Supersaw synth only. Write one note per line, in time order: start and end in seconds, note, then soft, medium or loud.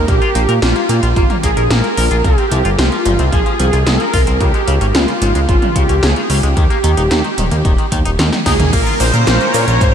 0.08 0.64 G4 loud
0.62 1.15 F4 medium
1.16 1.28 F4 medium
1.43 1.69 G#4 loud
1.70 2.21 A#4 loud
2.25 2.80 G4 loud
2.79 3.34 F4 medium
3.33 3.59 G#4 loud
3.60 3.85 G#4 loud
3.87 4.42 A#4 loud
4.41 4.91 G4 loud
4.95 5.45 F4 medium
5.49 5.74 F4 medium
5.76 6.04 G4 medium
6.03 6.28 G#4 medium
6.30 8.15 G4 loud
8.46 8.74 G#4 loud
8.73 8.98 A#4 loud
9.00 9.56 C5 loud
9.54 9.82 C#5 loud
9.81 9.94 C5 loud